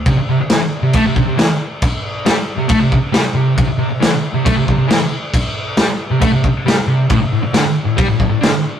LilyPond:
<<
  \new Staff \with { instrumentName = "Distorted electric guitar" } { \clef bass \time 4/4 \key c \lydian \tempo 4 = 136 c16 r16 c16 r16 e16 r8 c16 a16 c16 c16 c16 e16 r8. | r4 g16 r8 c16 a16 c8 r16 g16 r16 c8 | c16 r16 c16 r16 e16 r8 c16 a16 c16 c16 c16 e16 r8. | r4 g16 r8 c16 a16 c8 r16 g16 r16 c8 |
a,16 r16 a,16 r16 d16 r8 a,16 g16 a,16 a,16 a,16 d16 r8. | }
  \new DrumStaff \with { instrumentName = "Drums" } \drummode { \time 4/4 <cymc bd>4 <cymc sn>4 <cymc bd>8 bd8 <cymc sn>4 | <cymc bd>4 <cymc sn>4 <cymc bd>8 bd8 <cymc sn>4 | <cymc bd>4 <cymc sn>4 <cymc bd>8 bd8 <cymc sn>4 | <cymc bd>4 <cymc sn>4 <cymc bd>8 bd8 <cymc sn>4 |
<cymc bd>4 <cymc sn>4 <cymc bd>8 bd8 <cymc sn>4 | }
>>